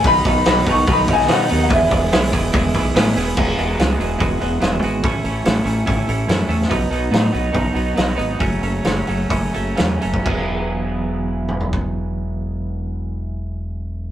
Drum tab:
CC |----------------|----------------|x---------------|----------------|
HH |o-o-o-o-o-o-o-o-|o-o-o-o-o-o-o-o-|--o-o-o-o-o-o-o-|o-o-o-o-o-o-o-o-|
SD |----o------oo---|----o-------o---|----o-------o---|----o-------o--o|
T2 |----------------|----------------|----------------|----------------|
FT |----------------|----------------|----------------|----------------|
BD |o-o---o-o-o-----|o-o---o-o-o-----|o-------o-------|o-------o-------|

CC |----------------|----------------|x---------------|----------------|
HH |o-o-o-o-o-o-o-o-|o-o-o-o-o-o-o-o-|----------------|----------------|
SD |----o-------o---|----o-------o---|----------------|----------------|
T2 |----------------|----------------|----------o-----|----------------|
FT |----------------|----------------|-----------o----|----------------|
BD |o-------o-------|o-------o------o|o-----------o---|----------------|